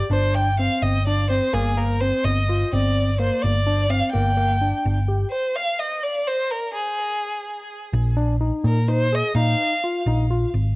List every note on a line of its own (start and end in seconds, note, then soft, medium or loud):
0.10 0.68 G1 medium
0.10 0.48 D4 medium
0.10 0.36 C5 medium
0.35 0.59 G5 medium
0.59 0.96 C4 medium
0.59 0.84 F5 medium
0.82 1.39 G1 medium
0.82 1.06 D#5 medium
1.07 1.25 D4 medium
1.07 1.29 D5 medium
1.30 1.49 C4 medium
1.30 1.55 C5 medium
1.53 2.11 G1 medium
1.53 1.72 A#3 medium
1.53 1.78 G#4 medium
1.77 1.96 A#3 medium
1.77 2.02 A#4 medium
2.00 2.38 C4 medium
2.00 2.25 C5 medium
2.24 2.63 G1 medium
2.24 2.60 D#5 medium
2.49 2.67 F4 medium
2.73 3.29 G1 medium
2.73 3.09 C4 medium
2.73 3.17 D5 medium
3.19 3.56 A#3 medium
3.19 3.43 C5 medium
3.42 4.01 G1 medium
3.42 3.91 D5 medium
3.67 3.85 D4 medium
3.90 4.09 C4 medium
3.90 4.12 F5 medium
4.12 4.72 G1 medium
4.12 4.32 A#3 medium
4.12 5.04 G5 medium
4.37 4.56 A#3 medium
4.61 4.99 D4 medium
4.86 5.24 G1 medium
5.09 5.27 G4 medium
5.30 5.57 C5 medium
5.56 5.81 F5 medium
5.79 6.04 D#5 medium
6.03 6.29 D5 medium
6.27 6.52 C5 medium
6.51 6.73 A#4 medium
6.74 7.65 G#4 medium
7.93 8.50 A#1 medium
8.17 8.35 D4 medium
8.41 8.78 D#4 medium
8.64 9.21 A#2 medium
8.64 8.87 A#4 medium
8.88 9.07 D#4 medium
8.88 9.16 C5 medium
9.12 9.31 G#4 medium
9.12 9.36 D#5 medium
9.35 9.54 A#2 medium
9.35 9.73 D#4 medium
9.35 10.03 F5 medium
9.84 10.02 F4 medium
10.06 10.44 A#1 medium
10.06 10.25 D#4 medium
10.31 10.49 F4 medium
10.54 10.76 G#1 medium